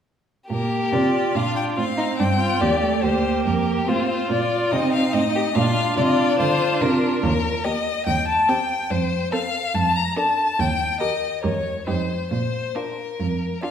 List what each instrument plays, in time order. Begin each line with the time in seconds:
0.50 cello A#2, viola A#3, violin G4 A#4
0.93 cello C3, viola F4, violin D5
1.35 cello A#2, viola D4, violin F4 F5
1.56 violin G5
1.77 cello A2, viola C4, violin F4 F5
1.98 violin D#4
2.19 cello G2, violin D4 G5
2.39 violin F4
2.61 cello D#2, viola A#3, violin G4 D5
2.82 viola A3
3.03 cello D2, viola A#3, violin G4 C5
3.45 cello F2, violin A#4
3.87 cello A2, viola C4, violin F4 C5
4.09 violin F4
4.29 cello A#2, viola F4, violin D5
4.71 cello C3, violin C4 D#5, viola D#4
4.93 violin F5
5.13 cello A2, violin C4 D#5
5.35 violin G4
5.55 cello A#2, viola D4, violin F4 F5
5.76 viola D4
5.97 cello C3, violin F4 D5
6.04 violin D#5
6.11 violin D5
6.39 cello D3, violin F4 C5
6.81 cello C3, violin D4 A#4, viola F4
7.22 cello D#2, violin A#4
7.64 viola A#3, violin G4 D#5
8.06 cello D#2, violin G5
8.28 violin A5
8.48 viola C4, violin G4 G5
8.90 cello F2, violin C5
9.32 viola C4, violin A4 F5
9.74 cello F2, violin A5
9.96 violin A#5
10.17 viola D4, violin A4 A5
10.59 cello D#2, violin G5
11.00 viola G4, violin A#4 D#5
11.43 cello E2, viola G4, violin A#4 C#5
11.87 cello F2, viola D#4, violin G4 C5
12.31 cello A#2, violin C5
12.75 viola D4, violin F4 A#4
13.20 cello F2
13.63 viola D4, violin F4 F5